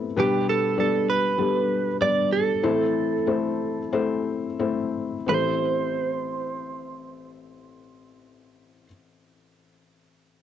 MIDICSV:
0, 0, Header, 1, 3, 480
1, 0, Start_track
1, 0, Key_signature, 0, "minor"
1, 0, Tempo, 607287
1, 139, Time_signature, 4, 2, 24, 8
1, 1580, Tempo, 639659
1, 3020, Tempo, 683371
1, 3980, Tempo, 705882
1, 7473, End_track
2, 0, Start_track
2, 0, Title_t, "Clean electric guitar"
2, 0, Program_c, 0, 27
2, 155, Note_on_c, 0, 67, 102
2, 387, Note_off_c, 0, 67, 0
2, 390, Note_on_c, 0, 69, 98
2, 623, Note_off_c, 0, 69, 0
2, 632, Note_on_c, 0, 69, 91
2, 847, Note_off_c, 0, 69, 0
2, 867, Note_on_c, 0, 71, 101
2, 1555, Note_off_c, 0, 71, 0
2, 1595, Note_on_c, 0, 74, 99
2, 1805, Note_off_c, 0, 74, 0
2, 1825, Note_on_c, 0, 69, 101
2, 3067, Note_off_c, 0, 69, 0
2, 3067, Note_on_c, 0, 67, 101
2, 3711, Note_off_c, 0, 67, 0
2, 3985, Note_on_c, 0, 72, 87
2, 6415, Note_off_c, 0, 72, 0
2, 7473, End_track
3, 0, Start_track
3, 0, Title_t, "Felt piano"
3, 0, Program_c, 1, 0
3, 0, Control_c, 1, 64, 127
3, 0, Note_on_c, 1, 45, 66
3, 0, Note_on_c, 1, 52, 69
3, 0, Note_on_c, 1, 57, 82
3, 0, Note_on_c, 1, 59, 75
3, 0, Note_on_c, 1, 60, 66
3, 0, Note_on_c, 1, 64, 72
3, 0, Note_on_c, 1, 69, 88
3, 0, Note_on_c, 1, 72, 85
3, 110, Note_off_c, 1, 52, 0
3, 111, Note_off_c, 1, 45, 0
3, 130, Note_on_c, 1, 47, 70
3, 130, Note_on_c, 1, 55, 108
3, 132, Note_off_c, 1, 59, 0
3, 132, Note_on_c, 1, 59, 96
3, 135, Note_on_c, 1, 62, 97
3, 135, Note_on_c, 1, 67, 95
3, 135, Note_on_c, 1, 71, 111
3, 148, Control_c, 1, 64, 0
3, 149, Note_off_c, 1, 72, 0
3, 154, Note_off_c, 1, 57, 0
3, 154, Note_off_c, 1, 60, 0
3, 155, Note_off_c, 1, 64, 0
3, 156, Note_off_c, 1, 69, 0
3, 299, Control_c, 1, 64, 127
3, 517, Note_off_c, 1, 55, 0
3, 518, Note_off_c, 1, 59, 0
3, 519, Note_off_c, 1, 62, 0
3, 519, Note_off_c, 1, 67, 0
3, 519, Note_off_c, 1, 71, 0
3, 611, Note_on_c, 1, 55, 75
3, 612, Note_on_c, 1, 59, 70
3, 612, Note_on_c, 1, 67, 68
3, 614, Note_on_c, 1, 62, 67
3, 615, Note_on_c, 1, 74, 84
3, 998, Note_off_c, 1, 55, 0
3, 998, Note_off_c, 1, 59, 0
3, 998, Note_off_c, 1, 67, 0
3, 1000, Note_off_c, 1, 62, 0
3, 1000, Note_off_c, 1, 74, 0
3, 1091, Note_on_c, 1, 55, 74
3, 1092, Note_on_c, 1, 59, 70
3, 1093, Note_on_c, 1, 62, 69
3, 1095, Note_on_c, 1, 67, 75
3, 1095, Note_on_c, 1, 69, 84
3, 1483, Note_off_c, 1, 55, 0
3, 1483, Note_off_c, 1, 59, 0
3, 1484, Note_off_c, 1, 62, 0
3, 1485, Note_off_c, 1, 67, 0
3, 1485, Note_off_c, 1, 69, 0
3, 1588, Note_on_c, 1, 55, 77
3, 1588, Note_on_c, 1, 59, 75
3, 1589, Note_on_c, 1, 62, 67
3, 1589, Note_on_c, 1, 67, 73
3, 1589, Note_on_c, 1, 74, 88
3, 1961, Note_off_c, 1, 55, 0
3, 1961, Note_off_c, 1, 59, 0
3, 1961, Note_off_c, 1, 67, 0
3, 1961, Note_off_c, 1, 74, 0
3, 1962, Note_off_c, 1, 62, 0
3, 2016, Note_off_c, 1, 47, 0
3, 2054, Note_on_c, 1, 60, 90
3, 2057, Note_on_c, 1, 45, 66
3, 2057, Note_on_c, 1, 57, 98
3, 2057, Note_on_c, 1, 64, 94
3, 2057, Note_on_c, 1, 69, 93
3, 2058, Note_on_c, 1, 52, 70
3, 2058, Note_on_c, 1, 72, 107
3, 2060, Control_c, 1, 64, 0
3, 2169, Control_c, 1, 64, 127
3, 2436, Note_off_c, 1, 60, 0
3, 2438, Note_off_c, 1, 57, 0
3, 2438, Note_off_c, 1, 64, 0
3, 2438, Note_off_c, 1, 69, 0
3, 2438, Note_off_c, 1, 72, 0
3, 2528, Note_on_c, 1, 57, 83
3, 2532, Note_on_c, 1, 69, 79
3, 2533, Note_on_c, 1, 60, 81
3, 2534, Note_on_c, 1, 64, 80
3, 2536, Note_on_c, 1, 72, 93
3, 2922, Note_off_c, 1, 57, 0
3, 2924, Note_off_c, 1, 69, 0
3, 2925, Note_off_c, 1, 60, 0
3, 2925, Note_off_c, 1, 64, 0
3, 2926, Note_off_c, 1, 72, 0
3, 3024, Note_on_c, 1, 57, 90
3, 3024, Note_on_c, 1, 64, 77
3, 3025, Note_on_c, 1, 60, 81
3, 3026, Note_on_c, 1, 69, 83
3, 3027, Note_on_c, 1, 72, 104
3, 3401, Note_off_c, 1, 57, 0
3, 3401, Note_off_c, 1, 60, 0
3, 3401, Note_off_c, 1, 64, 0
3, 3402, Note_off_c, 1, 69, 0
3, 3402, Note_off_c, 1, 72, 0
3, 3494, Note_on_c, 1, 60, 84
3, 3495, Note_on_c, 1, 57, 89
3, 3495, Note_on_c, 1, 64, 82
3, 3495, Note_on_c, 1, 69, 78
3, 3496, Note_on_c, 1, 72, 98
3, 3884, Note_off_c, 1, 60, 0
3, 3884, Note_off_c, 1, 64, 0
3, 3885, Note_off_c, 1, 57, 0
3, 3885, Note_off_c, 1, 69, 0
3, 3885, Note_off_c, 1, 72, 0
3, 3955, Note_off_c, 1, 45, 0
3, 3956, Note_off_c, 1, 52, 0
3, 3965, Note_on_c, 1, 60, 83
3, 3976, Note_on_c, 1, 64, 76
3, 3982, Note_on_c, 1, 33, 84
3, 3983, Note_on_c, 1, 69, 77
3, 3990, Control_c, 1, 64, 0
3, 3994, Note_on_c, 1, 72, 89
3, 4091, Control_c, 1, 64, 127
3, 6396, Note_off_c, 1, 60, 0
3, 6407, Note_off_c, 1, 64, 0
3, 6412, Note_off_c, 1, 33, 0
3, 6413, Note_off_c, 1, 69, 0
3, 6425, Note_off_c, 1, 72, 0
3, 7473, End_track
0, 0, End_of_file